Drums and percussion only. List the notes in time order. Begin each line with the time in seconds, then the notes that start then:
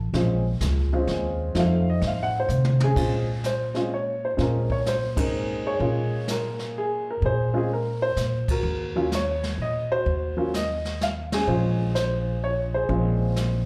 0.14 brush sweep, kick, snare
0.61 kick, snare, hi-hat pedal
1.07 kick, snare
1.55 brush sweep, kick, snare
2.02 kick, snare
2.49 hi-hat pedal, mid tom
2.65 mid tom
2.80 mid tom
2.96 brush sweep, kick, crash
3.44 snare, hi-hat pedal
3.75 snare
4.38 brush sweep, kick, snare
4.70 kick
4.86 snare, hi-hat pedal
5.17 kick, ride
5.80 brush sweep, kick
6.28 snare, hi-hat pedal
6.59 snare
7.22 brush sweep, kick
8.17 snare, hi-hat pedal
8.48 kick, ride
8.65 brush sweep
9.12 snare, hi-hat pedal
9.44 snare
10.06 brush sweep, kick
10.54 snare, hi-hat pedal
10.85 snare
11.01 snare, hi-hat pedal
11.32 snare, ride
11.48 brush sweep
11.95 snare, hi-hat pedal
12.89 brush sweep, kick
13.36 snare, hi-hat pedal